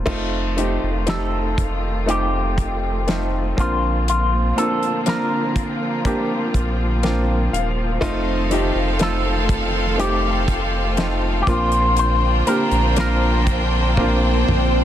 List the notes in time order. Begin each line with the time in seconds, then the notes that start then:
0.06 F1 D#3 F3 A3 C4 D#4 F4, kick, crash
0.57 A3 C4 D#4 G4, closed hi-hat
0.83 F1
1.06 A3 C4 D#4 G4 A4, snare, closed hi-hat
1.58 kick, closed hi-hat
2.06 A3 C4 D#4 F4 G4, closed hi-hat
2.58 kick, closed hi-hat
3.07 A3 C4 D#4 F4, snare, closed hi-hat
3.57 A#1 A#2 D3 A#3 C4 D4 F4, kick, closed hi-hat
4.08 F4, closed hi-hat
4.56 A#3 C4 D4 F4 A4, closed hi-hat
4.83 closed hi-hat
5.06 A#3 C4 D4 F4 A#4, snare, closed hi-hat
5.56 kick, closed hi-hat
6.05 A#3 C4 D4 G4, kick, closed hi-hat
6.54 A#1, kick, closed hi-hat
7.03 A#3 C4 D4 F4 G5, snare, closed hi-hat
7.52 D#1 F5, closed hi-hat
8.01 F1 D#3 A3 C4 D#4 F4 A4 F5, kick, closed hi-hat
8.51 A3 C4 D#4 G4, closed hi-hat
8.75 F1
8.99 A3 C4 D#4 F4 A4, snare, closed hi-hat
9.49 kick, closed hi-hat
9.98 A3 C4 D#4 G4, closed hi-hat
10.48 kick, closed hi-hat
10.97 A3 C4 D#4 F4, snare, closed hi-hat
11.42 G4
11.47 A#1 A#2 D3 A#3 C4 D4 F4 C5 G5, kick, closed hi-hat
11.72 closed hi-hat
11.97 C5, closed hi-hat, swell
12.47 A#3 C4 D4 G4 A#4, closed hi-hat
12.71 A#1, closed hi-hat
12.96 A#3 C4 D4 F4 A#4, snare, closed hi-hat
13.47 kick, closed hi-hat
13.97 A#3 C4 D4 F4, kick, high tom
14.48 A#1, mid tom